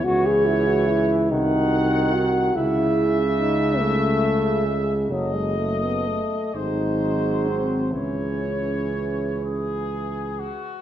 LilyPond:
<<
  \new Staff \with { instrumentName = "Trumpet section" } { \time 6/8 \key cis \minor \tempo 4. = 44 cis''4. ges''4. | e''2. | dis''4. bis'4. | cis''4. gis'4 fis'8 | }
  \new Staff \with { instrumentName = "French horn section" } { \time 6/8 \key cis \minor gis'4. ges'4. | gis'4. gis'4. | a'4. gis'4. | gis'2~ gis'8 r8 | }
  \new Staff \with { instrumentName = "Euphonium" } { \time 6/8 \key cis \minor fis'16 gis'16 e'16 fis'16 e'8 ees'4 ges'8 | e'4 dis'8 a4 gis8 | fis16 gis16 a16 b16 a8 dis'4 bis8 | cis'4. r4. | }
  \new Staff \with { instrumentName = "Trombone" } { \clef bass \time 6/8 \key cis \minor e4. ees4. | cis2.~ | cis4 r8 fis4. | e2~ e8 r8 | }
  \new Staff \with { instrumentName = "Tuba" } { \clef bass \time 6/8 \key cis \minor cis,4. c,4. | cis,2. | fis,,4 r8 gis,,4. | cis,2~ cis,8 r8 | }
>>